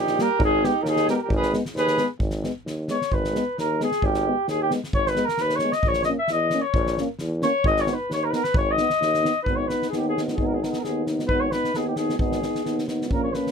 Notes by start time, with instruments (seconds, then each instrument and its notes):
Already playing: tuba A#1, alto saxophone D#4
0.00 flugelhorn G4
0.07 snare
0.19 euphonium G3 A#3, alto saxophone G4, flugelhorn A#4, snare
0.38 tuba G#1, kick
0.43 alto saxophone D#4, flugelhorn G#4
0.63 euphonium G#3 B3, flugelhorn G4, snare
0.68 alto saxophone D#4
0.82 tuba D#2, alto saxophone G4, flugelhorn A#4, snare
0.88 alto saxophone D#4, flugelhorn G#4
0.96 snare
1.08 euphonium G#3 B3, alto saxophone G4, flugelhorn A#4, snare
1.14 alto saxophone G4, flugelhorn A#4
1.22 alto saxophone G4, flugelhorn A#4
1.28 tuba G#1, kick
1.35 alto saxophone G#4, flugelhorn B4
1.43 snare
1.52 euphonium G#3 B3, snare
1.66 snare
1.74 tuba D#2, alto saxophone G#4, flugelhorn B4, snare
1.87 snare
1.97 euphonium G#3 B3, snare
2.19 tuba G#1, kick
2.30 snare
2.42 euphonium G#3 B3, snare
2.65 tuba D#2, snare
2.88 euphonium G#3 B3, flugelhorn C#5, snare
3.01 snare
3.11 tuba G#1, flugelhorn B4, kick
3.24 snare
3.33 euphonium G#3 B3, snare
3.58 tuba D#2, flugelhorn A#4, snare
3.80 euphonium G#3 B3, flugelhorn G#4, snare
3.92 snare
4.02 tuba G#1, flugelhorn G4, kick
4.14 snare
4.25 euphonium G#3 B3
4.47 tuba D#2, flugelhorn G#4, snare
4.62 flugelhorn G4
4.70 euphonium G#3 B3, snare
4.84 snare
4.92 tuba G#1, flugelhorn C#5, kick
5.07 flugelhorn B4, snare
5.16 euphonium G#3 B3, snare
5.26 flugelhorn A#4, snare
5.38 tuba D#2, snare
5.42 flugelhorn B4
5.49 snare
5.56 flugelhorn C#5, snare
5.63 euphonium G#3 B3
5.72 flugelhorn D#5, snare
5.83 tuba A#1, kick
5.88 flugelhorn C#5
5.93 snare
6.03 flugelhorn D#5, snare
6.08 euphonium A#3 C#4
6.19 flugelhorn E5
6.28 tuba E2, snare
6.32 flugelhorn D#5
6.50 euphonium A#3 C#4, snare
6.62 flugelhorn C#5
6.74 tuba A#1, kick
6.87 snare
6.98 euphonium A#3 C#4, snare
7.19 tuba E2, snare
7.42 euphonium A#3 C#4, flugelhorn C#5, snare
7.64 tuba G#1, flugelhorn D#5, kick
7.77 snare
7.81 flugelhorn C#5
7.86 euphonium B3 D#4, snare
7.94 flugelhorn B4
8.09 tuba D#2, flugelhorn C#5, snare
8.24 flugelhorn A#4
8.30 euphonium B3 D#4, flugelhorn A#4 B4, snare
8.43 flugelhorn B4, snare
8.54 tuba G#1, flugelhorn C#5, kick
8.71 flugelhorn D#5
8.77 euphonium B3 D#4, snare
8.90 snare
9.00 tuba D#2, snare
9.14 snare
9.23 euphonium B3 D#4, snare
9.43 tuba G#1, euphonium D#4, flugelhorn B4, kick
9.47 euphonium B3
9.56 flugelhorn C#5
9.68 euphonium B3 D#4, flugelhorn B4, snare
9.82 snare
9.89 tuba D#2, euphonium B3, flugelhorn G#4, snare
9.93 euphonium D#4
9.98 flugelhorn G4
10.09 flugelhorn G#4
10.16 euphonium B3 D#4, snare
10.28 snare
10.34 tuba G#1, flugelhorn G#4
10.38 euphonium B3 D#4, kick
10.46 flugelhorn A#4
10.54 flugelhorn G#4
10.60 euphonium B3 D#4, flugelhorn A#4, snare
10.70 flugelhorn G#4, snare
10.78 flugelhorn A#4
10.82 tuba D#2, euphonium B3 D#4, flugelhorn G#4, snare
11.07 euphonium B3 D#4, snare
11.19 snare
11.28 tuba G#1, euphonium B3 D#4, flugelhorn B4, kick
11.41 flugelhorn C#5
11.52 euphonium B3 D#4, flugelhorn B4, snare
11.64 snare
11.73 tuba D#2, euphonium B3 D#4, flugelhorn G#4, snare
11.87 flugelhorn G4
11.96 euphonium B3 D#4, flugelhorn G#4, snare
12.09 snare
12.18 tuba G#1, euphonium B3 D#4, flugelhorn G#4, kick
12.32 snare
12.42 euphonium B3 D#4, snare
12.55 snare
12.64 tuba D#2, euphonium B3 D#4, snare
12.78 snare
12.87 euphonium B3 D#4, snare
13.01 snare
13.10 tuba A#1, euphonium A#3 C#4, flugelhorn A#4, kick
13.23 flugelhorn C#5
13.32 euphonium A#3 C#4, flugelhorn B4, snare
13.47 snare